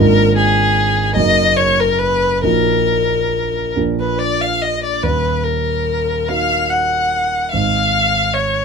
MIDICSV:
0, 0, Header, 1, 3, 480
1, 0, Start_track
1, 0, Key_signature, -6, "minor"
1, 0, Tempo, 803213
1, 940, Tempo, 867052
1, 1419, Time_signature, 6, 3, 24, 8
1, 2860, Tempo, 828729
1, 4300, Tempo, 787402
1, 4983, End_track
2, 0, Start_track
2, 0, Title_t, "Violin"
2, 0, Program_c, 0, 40
2, 0, Note_on_c, 0, 70, 80
2, 214, Note_off_c, 0, 70, 0
2, 218, Note_on_c, 0, 68, 75
2, 687, Note_off_c, 0, 68, 0
2, 692, Note_on_c, 0, 75, 80
2, 937, Note_on_c, 0, 73, 75
2, 946, Note_off_c, 0, 75, 0
2, 1066, Note_on_c, 0, 70, 70
2, 1074, Note_off_c, 0, 73, 0
2, 1168, Note_on_c, 0, 71, 70
2, 1176, Note_off_c, 0, 70, 0
2, 1416, Note_off_c, 0, 71, 0
2, 1424, Note_on_c, 0, 70, 73
2, 2142, Note_off_c, 0, 70, 0
2, 2283, Note_on_c, 0, 71, 54
2, 2388, Note_on_c, 0, 74, 63
2, 2396, Note_off_c, 0, 71, 0
2, 2511, Note_on_c, 0, 77, 58
2, 2519, Note_off_c, 0, 74, 0
2, 2628, Note_on_c, 0, 75, 60
2, 2636, Note_off_c, 0, 77, 0
2, 2743, Note_off_c, 0, 75, 0
2, 2746, Note_on_c, 0, 74, 57
2, 2855, Note_on_c, 0, 71, 66
2, 2863, Note_off_c, 0, 74, 0
2, 3090, Note_on_c, 0, 70, 54
2, 3098, Note_off_c, 0, 71, 0
2, 3581, Note_on_c, 0, 77, 67
2, 3590, Note_off_c, 0, 70, 0
2, 3819, Note_on_c, 0, 78, 55
2, 3827, Note_off_c, 0, 77, 0
2, 4293, Note_off_c, 0, 78, 0
2, 4296, Note_on_c, 0, 77, 70
2, 4793, Note_on_c, 0, 73, 64
2, 4802, Note_off_c, 0, 77, 0
2, 4983, Note_off_c, 0, 73, 0
2, 4983, End_track
3, 0, Start_track
3, 0, Title_t, "Grand piano"
3, 0, Program_c, 1, 0
3, 0, Note_on_c, 1, 32, 53
3, 0, Note_on_c, 1, 44, 61
3, 0, Note_on_c, 1, 58, 45
3, 0, Note_on_c, 1, 62, 47
3, 0, Note_on_c, 1, 65, 47
3, 80, Control_c, 1, 64, 127
3, 676, Note_off_c, 1, 58, 0
3, 679, Note_off_c, 1, 44, 0
3, 680, Note_off_c, 1, 32, 0
3, 680, Note_off_c, 1, 62, 0
3, 680, Note_off_c, 1, 65, 0
3, 693, Note_on_c, 1, 30, 53
3, 694, Note_on_c, 1, 58, 43
3, 695, Note_on_c, 1, 42, 59
3, 696, Note_on_c, 1, 63, 42
3, 701, Note_on_c, 1, 66, 44
3, 708, Control_c, 1, 64, 0
3, 819, Control_c, 1, 64, 127
3, 1395, Note_off_c, 1, 30, 0
3, 1395, Note_off_c, 1, 58, 0
3, 1395, Note_off_c, 1, 63, 0
3, 1396, Note_off_c, 1, 42, 0
3, 1398, Note_off_c, 1, 66, 0
3, 1415, Note_on_c, 1, 34, 49
3, 1415, Note_on_c, 1, 46, 49
3, 1415, Note_on_c, 1, 58, 38
3, 1419, Note_on_c, 1, 63, 39
3, 1423, Note_on_c, 1, 66, 39
3, 1429, Control_c, 1, 64, 0
3, 1534, Control_c, 1, 64, 127
3, 2130, Note_off_c, 1, 34, 0
3, 2130, Note_off_c, 1, 46, 0
3, 2130, Note_off_c, 1, 58, 0
3, 2132, Note_off_c, 1, 63, 0
3, 2134, Note_off_c, 1, 66, 0
3, 2152, Note_on_c, 1, 46, 51
3, 2153, Note_on_c, 1, 58, 36
3, 2155, Note_on_c, 1, 34, 42
3, 2155, Note_on_c, 1, 62, 36
3, 2159, Note_on_c, 1, 65, 36
3, 2165, Control_c, 1, 64, 0
3, 2275, Control_c, 1, 64, 127
3, 2838, Note_off_c, 1, 46, 0
3, 2838, Note_off_c, 1, 58, 0
3, 2839, Note_off_c, 1, 62, 0
3, 2840, Note_off_c, 1, 34, 0
3, 2841, Note_off_c, 1, 65, 0
3, 2852, Note_on_c, 1, 27, 44
3, 2854, Note_on_c, 1, 39, 48
3, 2869, Control_c, 1, 64, 0
3, 2976, Control_c, 1, 64, 127
3, 3582, Note_on_c, 1, 58, 36
3, 3586, Note_on_c, 1, 63, 36
3, 3588, Note_on_c, 1, 66, 39
3, 4273, Note_off_c, 1, 27, 0
3, 4275, Note_off_c, 1, 39, 0
3, 4278, Note_off_c, 1, 58, 0
3, 4280, Note_off_c, 1, 63, 0
3, 4281, Note_off_c, 1, 66, 0
3, 4303, Note_on_c, 1, 44, 48
3, 4304, Note_on_c, 1, 32, 43
3, 4311, Control_c, 1, 64, 0
3, 4418, Control_c, 1, 64, 127
3, 4983, Note_off_c, 1, 32, 0
3, 4983, Note_off_c, 1, 44, 0
3, 4983, End_track
0, 0, End_of_file